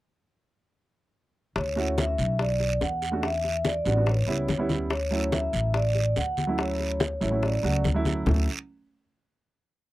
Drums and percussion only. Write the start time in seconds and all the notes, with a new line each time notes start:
1.56 high bongo, high conga, long guiro
1.77 high bongo, high conga
1.98 high bongo, high conga, short guiro
2.18 high conga, short guiro
2.39 high bongo, high conga, long guiro
2.60 high bongo, high conga
2.81 high bongo, low bongo, high conga, short guiro
3.02 high bongo, short guiro
3.23 high bongo, high conga, long guiro
3.44 high bongo, high conga
3.65 high bongo, high conga, short guiro
3.85 high conga, short guiro
4.06 high bongo, high conga, long guiro
4.27 high bongo, high conga
4.48 high bongo, low bongo, high conga, short guiro
4.69 high bongo, high conga, short guiro
4.90 high bongo, high conga, long guiro
5.12 high bongo, high conga
5.32 high bongo, high conga, short guiro
5.53 high conga, short guiro
5.74 high bongo, high conga, long guiro
5.95 high bongo, high conga
6.16 high bongo, low bongo, high conga, short guiro
6.37 high bongo, high conga, short guiro
6.58 high bongo, high conga, long guiro
6.80 high bongo, high conga
7.00 high bongo, high conga, short guiro
7.21 high conga, short guiro
7.42 high bongo, high conga, long guiro
7.63 high bongo, high conga
7.84 high bongo, low bongo, high conga, short guiro
8.05 high bongo, high conga, short guiro
8.26 low bongo, low conga, long guiro